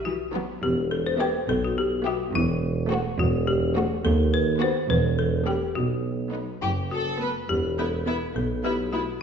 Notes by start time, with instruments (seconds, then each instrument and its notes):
Already playing: double bass section B1
0.05 cello section E3, marimba F#4
0.33 viola section D#3 F#3, cello section F#3, violin section B3
0.63 double bass section E1, tuba E1, cello section E2, marimba G4
0.91 marimba A4
1.06 marimba C5
1.20 viola section B3, violin section G4 E5, marimba B4
1.49 double bass section B1, tuba B1, cello section B2, marimba A4
1.64 marimba F#4
1.78 marimba G4
2.06 viola section B3, marimba F#4, violin section G4 E5
2.35 tuba E1, double bass section E1, cello section E2, marimba E4
2.91 viola section A3, violin section F#4 C5
3.19 double bass section E1, tuba E1, cello section E2, marimba F#4
3.47 marimba G4
3.76 viola section A3, violin section F#4 C5
4.05 double bass section D#2, tuba D#2, cello section D#2, marimba A4
4.34 marimba B4
4.61 viola section B3, violin section F#4 B4, marimba C5
4.89 double bass section E1, tuba E1, cello section E2, marimba B4
5.19 marimba A4
5.47 viola section B3, marimba G4, violin section G4 B4
5.75 tuba B1, double bass section B1, cello section B2, marimba F#4
6.33 viola section B3, violin section D#4 B4
6.62 tuba F#1, double bass section F#1, cello section F#2, marimba E4, violin section G4
6.91 marimba F#4, violin section A4
7.21 viola section B3, violin section B4
7.49 double bass section E1, tuba E1, cello section E2, marimba G4
7.79 viola section B3, violin section E4 B4, marimba A4
8.07 viola section B3, violin section E4 B4, marimba B4
8.36 double bass section B1, tuba B1, cello section B2, marimba A4
8.64 viola section B3, violin section E4 B4, marimba G4
8.93 viola section B3, violin section E4 B4, marimba F#4